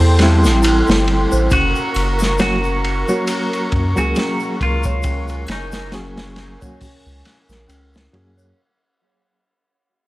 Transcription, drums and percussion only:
0.00 shaker soft
0.19 snare soft
0.19 ride medium
0.44 snare soft
0.44 shaker medium
0.63 ride loud
0.63 shaker medium
0.87 snare loud
0.87 shaker soft
1.08 ride medium
1.32 shaker medium
1.50 kick medium
1.50 ride medium
1.50 shaker medium
1.75 shaker soft
1.94 ride medium
1.94 triangle medium
2.19 snare soft
2.19 triangle medium
2.19 shaker medium
2.38 snare loud
2.38 ride medium
2.38 shaker medium
2.64 shaker soft
2.84 ride medium
3.08 shaker medium
3.27 ride loud
3.27 shaker medium
3.53 ride soft
3.53 shaker soft
3.72 kick medium
3.72 ride medium
3.97 shaker medium
4.15 snare loud
4.15 ride medium
4.15 shaker medium
4.40 shaker soft
4.61 kick loud
4.61 ride medium
4.83 kick loud
4.83 shaker medium
5.03 kick loud
5.03 ride medium
5.03 shaker medium
5.28 ride soft
5.28 shaker soft
5.47 snare loud
5.47 ride medium
5.47 triangle medium
5.72 snare loud
5.72 ride medium
5.72 triangle medium
5.72 shaker medium
5.92 snare loud
5.92 ride medium
5.92 shaker medium
6.17 snare loud
6.17 ride medium
6.17 shaker soft
6.36 snare medium
6.36 ride medium
6.62 kick loud
6.62 shaker medium
6.81 kick loud
6.81 open hi-hat medium
6.81 shaker medium
7.07 shaker soft
7.25 snare soft
7.25 ride medium
7.49 snare soft
7.49 shaker medium
7.69 ride medium
7.69 shaker medium
7.94 snare loud
7.94 shaker soft
8.14 ride medium
8.38 shaker medium

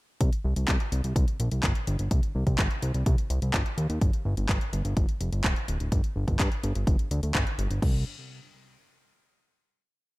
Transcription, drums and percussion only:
0.21 kick loud
0.21 closed hi-hat loud
0.33 closed hi-hat soft
0.56 closed hi-hat soft
0.68 kick loud
0.68 clap loud
0.68 closed hi-hat medium
0.80 closed hi-hat soft
0.92 closed hi-hat medium
1.04 closed hi-hat soft
1.16 kick loud
1.16 closed hi-hat medium
1.28 closed hi-hat soft
1.40 closed hi-hat medium
1.52 closed hi-hat soft
1.63 kick loud
1.63 clap loud
1.63 closed hi-hat medium
1.75 closed hi-hat soft
1.87 closed hi-hat medium
1.99 closed hi-hat soft
2.11 kick loud
2.11 closed hi-hat medium
2.23 closed hi-hat soft
2.47 kick medium
2.47 closed hi-hat soft
2.59 kick loud
2.59 clap loud
2.59 closed hi-hat medium
2.71 closed hi-hat soft
2.82 closed hi-hat medium
2.94 closed hi-hat soft
3.06 kick loud
3.06 closed hi-hat medium
3.18 closed hi-hat soft
3.30 closed hi-hat medium
3.42 closed hi-hat soft
3.54 kick loud
3.54 clap loud
3.54 closed hi-hat medium
3.66 closed hi-hat soft
3.78 closed hi-hat medium
3.90 closed hi-hat soft
4.01 kick loud
4.01 closed hi-hat medium
4.13 closed hi-hat soft
4.37 closed hi-hat soft
4.49 kick loud
4.49 clap loud
4.49 closed hi-hat medium
4.61 closed hi-hat soft
4.73 closed hi-hat medium
4.85 closed hi-hat soft
4.97 kick loud
4.97 closed hi-hat medium
5.09 closed hi-hat soft
5.21 closed hi-hat medium
5.33 closed hi-hat soft
5.44 kick loud
5.44 clap loud
5.44 closed hi-hat medium
5.56 closed hi-hat soft
5.68 closed hi-hat medium
5.80 closed hi-hat soft
5.92 kick loud
5.92 closed hi-hat medium
6.04 closed hi-hat soft
6.28 kick medium
6.28 closed hi-hat soft
6.40 kick loud
6.40 clap loud
6.40 closed hi-hat medium
6.52 closed hi-hat soft
6.63 closed hi-hat medium
6.75 closed hi-hat soft
6.87 kick loud
6.87 closed hi-hat medium
6.99 closed hi-hat soft
7.11 closed hi-hat medium
7.23 closed hi-hat soft
7.35 kick loud
7.35 clap loud
7.35 closed hi-hat medium
7.47 closed hi-hat soft
7.59 closed hi-hat medium
7.71 closed hi-hat soft
7.82 kick loud
7.82 crash medium

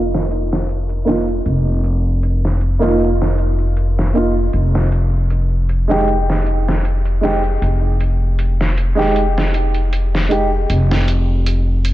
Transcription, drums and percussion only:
0.14 snare soft
0.31 closed hi-hat medium
0.53 snare soft
0.69 closed hi-hat medium
0.89 closed hi-hat soft
1.07 snare soft
1.07 closed hi-hat medium
1.28 closed hi-hat soft
1.46 closed hi-hat medium
1.84 closed hi-hat medium
2.23 closed hi-hat medium
2.45 snare soft
2.61 closed hi-hat medium
2.83 snare soft
3.00 closed hi-hat medium
3.22 snare soft
3.38 closed hi-hat medium
3.59 closed hi-hat soft
3.77 closed hi-hat medium
3.99 snare soft
4.15 closed hi-hat medium
4.53 closed hi-hat medium
4.75 snare soft
4.92 closed hi-hat medium
5.30 closed hi-hat medium
5.69 closed hi-hat medium
5.91 snare soft
6.08 closed hi-hat medium
6.30 snare soft
6.46 closed hi-hat medium
6.68 snare soft
6.85 closed hi-hat medium
7.05 closed hi-hat soft
7.23 snare soft
7.23 closed hi-hat medium
7.44 closed hi-hat soft
7.62 closed hi-hat medium
8.00 closed hi-hat medium
8.39 closed hi-hat medium
8.61 snare soft
8.78 closed hi-hat medium
8.99 snare soft
9.16 closed hi-hat medium
9.38 snare soft
9.54 closed hi-hat medium
9.74 closed hi-hat soft
9.93 closed hi-hat medium
10.15 snare soft
10.31 closed hi-hat medium
10.70 closed hi-hat medium
10.91 snare soft
11.08 closed hi-hat medium
11.46 closed hi-hat medium
11.85 closed hi-hat medium

